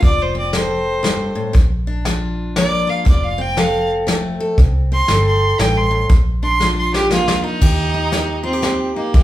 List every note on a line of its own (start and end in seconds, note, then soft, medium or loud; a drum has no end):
0.00 1.32 F1 medium
0.00 0.48 F2 medium
0.00 0.53 F4 medium
0.00 kick loud
0.00 closed hi-hat medium
0.04 0.23 D5 medium
0.22 0.37 C5 medium
0.35 1.55 C4 medium
0.35 0.54 D5 medium
0.53 1.00 F3 medium
0.53 1.52 A4 medium
0.53 1.53 C5 loud
0.53 snare medium
0.53 closed hi-hat medium
1.03 1.35 G2 medium
1.03 snare medium
1.03 closed hi-hat medium
1.35 1.54 A2 medium
1.53 2.84 A#1 medium
1.53 2.01 A#2 medium
1.53 kick loud
1.53 closed hi-hat medium
1.87 3.04 D4 medium
2.05 2.52 F3 medium
2.05 2.87 F4 medium
2.05 snare medium
2.05 closed hi-hat medium
2.56 3.03 F3 medium
2.56 3.05 A#3 medium
2.56 2.91 D5 loud
2.56 snare medium
2.56 closed hi-hat medium
2.87 3.57 F4 medium
2.87 3.06 F5 loud
3.05 4.36 F1 medium
3.05 3.53 F2 medium
3.05 3.25 D5 medium
3.05 kick loud
3.05 closed hi-hat medium
3.24 3.43 F5 medium
3.38 4.90 C4 medium
3.38 3.61 G5 loud
3.57 4.04 F3 medium
3.57 4.39 A4 medium
3.57 3.89 F5 loud
3.57 snare medium
3.57 closed hi-hat medium
4.07 4.54 F3 medium
4.07 4.56 A3 medium
4.07 snare medium
4.07 closed hi-hat medium
4.40 4.56 A4 medium
4.58 5.01 C2 medium
4.58 5.06 F2 medium
4.58 kick loud
4.58 closed hi-hat medium
4.92 6.11 C4 medium
4.92 5.25 C6 loud
5.08 5.52 G1 medium
5.08 5.57 F3 medium
5.08 6.09 A4 medium
5.08 snare medium
5.08 closed hi-hat medium
5.27 5.61 C6 loud
5.59 6.02 A1 medium
5.59 5.90 G2 medium
5.59 5.79 G5 loud
5.59 snare medium
5.59 closed hi-hat medium
5.77 6.04 C6 loud
5.91 6.10 A2 medium
6.09 7.39 A#1 medium
6.09 6.57 A#2 medium
6.09 kick loud
6.09 closed hi-hat medium
6.43 7.60 D4 medium
6.43 6.76 C6 loud
6.60 7.08 F3 medium
6.60 7.42 F4 medium
6.60 snare medium
6.78 6.93 C6 loud
6.94 7.11 G4 loud
6.94 snare medium
7.10 7.58 F3 medium
7.10 7.60 A#3 medium
7.10 7.41 F4 loud
7.10 snare medium
7.28 snare loud
7.44 8.41 D#4 loud
7.44 7.62 F4 medium
7.61 8.92 D#2 medium
7.61 8.09 D#3 medium
7.61 8.43 G4 medium
7.61 kick loud
7.61 crash loud
7.94 8.95 D#4 medium
8.12 8.59 A#3 medium
8.12 snare medium
8.12 closed hi-hat medium
8.43 8.92 C4 medium
8.43 8.53 F4 medium
8.53 9.14 G4 medium
8.62 9.10 A#3 medium
8.62 snare medium
8.62 closed hi-hat medium
8.95 9.23 A#3 medium
8.95 9.12 D#4 medium
9.14 9.23 A#1 medium
9.14 9.23 D#3 medium
9.14 9.23 G4 medium
9.14 kick loud
9.14 closed hi-hat medium